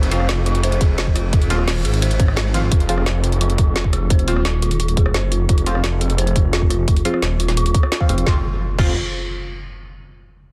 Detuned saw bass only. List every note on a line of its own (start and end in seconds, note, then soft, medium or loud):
0.00 0.10 F1 medium
0.12 1.49 F1 loud
1.50 1.84 D#1 medium
1.85 2.70 G#1 loud
2.72 2.88 F1 loud
2.89 4.26 F1 loud
4.28 5.13 D#1 loud
5.14 5.30 F#1 loud
5.32 5.48 F1 loud
5.49 5.65 F1 loud
5.66 7.04 F1 medium
7.22 7.73 D#1 loud
8.09 8.25 F1 loud
8.27 8.36 F1 loud
8.79 8.95 F1 loud